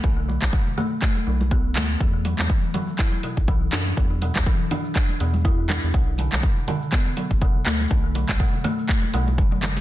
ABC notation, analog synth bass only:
X:1
M:4/4
L:1/16
Q:"Swing 16ths" 1/4=122
K:Bphr
V:1 name="Analog synth bass" clef=bass
B,,,3 B,,, z6 B,,,4 D,,2 | E,,3 E,, z6 z B,,,3 F,,2 | E,,3 E,, z6 E,,4- E,, E,, | B,,,3 B,,, z6 z F,,,3 D,,2 |
B,,,3 B,,, z6 B,,,2 F,,,4 |]